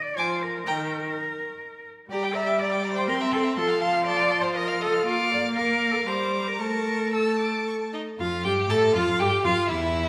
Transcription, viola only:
0, 0, Header, 1, 2, 480
1, 0, Start_track
1, 0, Tempo, 488599
1, 657, Time_signature, 3, 2, 24, 8
1, 4972, Tempo, 505051
1, 5932, Tempo, 530504
1, 7852, Tempo, 498339
1, 9676, End_track
2, 0, Start_track
2, 0, Title_t, "Viola"
2, 0, Program_c, 0, 41
2, 174, Note_on_c, 0, 53, 61
2, 577, Note_off_c, 0, 53, 0
2, 657, Note_on_c, 0, 51, 58
2, 1056, Note_off_c, 0, 51, 0
2, 2072, Note_on_c, 0, 55, 62
2, 3029, Note_on_c, 0, 60, 74
2, 3044, Note_off_c, 0, 55, 0
2, 3513, Note_on_c, 0, 53, 69
2, 3528, Note_off_c, 0, 60, 0
2, 4966, Note_off_c, 0, 53, 0
2, 4972, Note_on_c, 0, 58, 67
2, 5895, Note_off_c, 0, 58, 0
2, 5929, Note_on_c, 0, 55, 64
2, 6403, Note_on_c, 0, 57, 56
2, 6416, Note_off_c, 0, 55, 0
2, 7663, Note_off_c, 0, 57, 0
2, 7852, Note_on_c, 0, 65, 57
2, 7929, Note_off_c, 0, 65, 0
2, 8097, Note_on_c, 0, 67, 76
2, 8337, Note_on_c, 0, 69, 83
2, 8352, Note_off_c, 0, 67, 0
2, 8569, Note_off_c, 0, 69, 0
2, 8575, Note_on_c, 0, 65, 76
2, 8822, Note_on_c, 0, 67, 88
2, 8836, Note_off_c, 0, 65, 0
2, 9058, Note_on_c, 0, 65, 79
2, 9073, Note_off_c, 0, 67, 0
2, 9293, Note_on_c, 0, 64, 73
2, 9308, Note_off_c, 0, 65, 0
2, 9676, Note_off_c, 0, 64, 0
2, 9676, End_track
0, 0, End_of_file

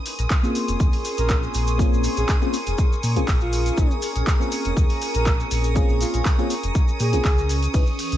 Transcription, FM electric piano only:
0, 0, Header, 1, 2, 480
1, 0, Start_track
1, 0, Key_signature, -5, "minor"
1, 0, Tempo, 495868
1, 1735, Time_signature, 4, 2, 24, 8
1, 7911, End_track
2, 0, Start_track
2, 0, Title_t, "FM electric piano"
2, 0, Program_c, 0, 5
2, 412, Note_on_c, 0, 58, 78
2, 417, Note_on_c, 0, 60, 72
2, 422, Note_on_c, 0, 61, 71
2, 427, Note_on_c, 0, 65, 72
2, 432, Note_on_c, 0, 68, 87
2, 1703, Note_off_c, 0, 58, 0
2, 1705, Note_off_c, 0, 60, 0
2, 1707, Note_off_c, 0, 61, 0
2, 1710, Note_off_c, 0, 65, 0
2, 1712, Note_off_c, 0, 68, 0
2, 1724, Note_on_c, 0, 58, 100
2, 1730, Note_on_c, 0, 60, 94
2, 1734, Note_on_c, 0, 61, 92
2, 1739, Note_on_c, 0, 65, 91
2, 1744, Note_on_c, 0, 68, 117
2, 2306, Note_off_c, 0, 58, 0
2, 2309, Note_off_c, 0, 60, 0
2, 2311, Note_off_c, 0, 61, 0
2, 2314, Note_off_c, 0, 65, 0
2, 2316, Note_off_c, 0, 68, 0
2, 2337, Note_on_c, 0, 58, 91
2, 2339, Note_on_c, 0, 60, 84
2, 2341, Note_on_c, 0, 61, 85
2, 2344, Note_on_c, 0, 65, 86
2, 2347, Note_on_c, 0, 68, 104
2, 2482, Note_off_c, 0, 58, 0
2, 2484, Note_off_c, 0, 60, 0
2, 2484, Note_off_c, 0, 61, 0
2, 2486, Note_off_c, 0, 65, 0
2, 2487, Note_off_c, 0, 68, 0
2, 3057, Note_on_c, 0, 58, 91
2, 3060, Note_on_c, 0, 60, 85
2, 3062, Note_on_c, 0, 61, 90
2, 3065, Note_on_c, 0, 65, 88
2, 3067, Note_on_c, 0, 68, 105
2, 3146, Note_off_c, 0, 58, 0
2, 3148, Note_off_c, 0, 60, 0
2, 3149, Note_off_c, 0, 61, 0
2, 3150, Note_off_c, 0, 65, 0
2, 3151, Note_off_c, 0, 68, 0
2, 3649, Note_on_c, 0, 58, 79
2, 3651, Note_on_c, 0, 60, 74
2, 3654, Note_on_c, 0, 61, 74
2, 3656, Note_on_c, 0, 65, 74
2, 3659, Note_on_c, 0, 68, 86
2, 3750, Note_off_c, 0, 58, 0
2, 3751, Note_off_c, 0, 60, 0
2, 3753, Note_off_c, 0, 61, 0
2, 3754, Note_off_c, 0, 65, 0
2, 3755, Note_off_c, 0, 68, 0
2, 4252, Note_on_c, 0, 58, 79
2, 4257, Note_on_c, 0, 60, 74
2, 4262, Note_on_c, 0, 61, 72
2, 4267, Note_on_c, 0, 65, 71
2, 4272, Note_on_c, 0, 68, 86
2, 5542, Note_off_c, 0, 58, 0
2, 5545, Note_off_c, 0, 60, 0
2, 5547, Note_off_c, 0, 61, 0
2, 5550, Note_off_c, 0, 65, 0
2, 5552, Note_off_c, 0, 68, 0
2, 5564, Note_on_c, 0, 58, 105
2, 5569, Note_on_c, 0, 60, 96
2, 5574, Note_on_c, 0, 61, 90
2, 5579, Note_on_c, 0, 65, 93
2, 5584, Note_on_c, 0, 68, 114
2, 6146, Note_off_c, 0, 58, 0
2, 6149, Note_off_c, 0, 60, 0
2, 6151, Note_off_c, 0, 61, 0
2, 6154, Note_off_c, 0, 65, 0
2, 6156, Note_off_c, 0, 68, 0
2, 6177, Note_on_c, 0, 58, 92
2, 6179, Note_on_c, 0, 60, 84
2, 6182, Note_on_c, 0, 61, 88
2, 6184, Note_on_c, 0, 65, 89
2, 6186, Note_on_c, 0, 68, 106
2, 6322, Note_off_c, 0, 58, 0
2, 6323, Note_off_c, 0, 60, 0
2, 6325, Note_off_c, 0, 61, 0
2, 6326, Note_off_c, 0, 65, 0
2, 6327, Note_off_c, 0, 68, 0
2, 6897, Note_on_c, 0, 58, 93
2, 6899, Note_on_c, 0, 60, 89
2, 6902, Note_on_c, 0, 61, 87
2, 6904, Note_on_c, 0, 65, 88
2, 6907, Note_on_c, 0, 68, 105
2, 6986, Note_off_c, 0, 58, 0
2, 6988, Note_off_c, 0, 60, 0
2, 6989, Note_off_c, 0, 61, 0
2, 6990, Note_off_c, 0, 65, 0
2, 6991, Note_off_c, 0, 68, 0
2, 7489, Note_on_c, 0, 61, 80
2, 7491, Note_on_c, 0, 63, 74
2, 7494, Note_on_c, 0, 64, 72
2, 7497, Note_on_c, 0, 68, 76
2, 7499, Note_on_c, 0, 71, 89
2, 7590, Note_off_c, 0, 61, 0
2, 7592, Note_off_c, 0, 63, 0
2, 7593, Note_off_c, 0, 64, 0
2, 7594, Note_off_c, 0, 68, 0
2, 7596, Note_off_c, 0, 71, 0
2, 7911, End_track
0, 0, End_of_file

